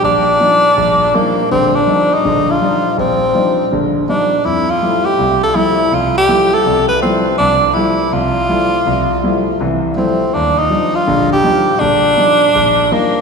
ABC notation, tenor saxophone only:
X:1
M:4/4
L:1/16
Q:"Swing" 1/4=163
K:Eb
V:1 name="Tenor saxophone"
D12 B,4 | C2 D4 E4 F6 | C8- C z3 D4 | =E2 F4 G4 =A2 E4 |
F2 G4 =A4 _c2 =C4 | D4 =E4 F8- | F8- F z3 C4 | D2 E4 F4 G6 |
D12 B,4 |]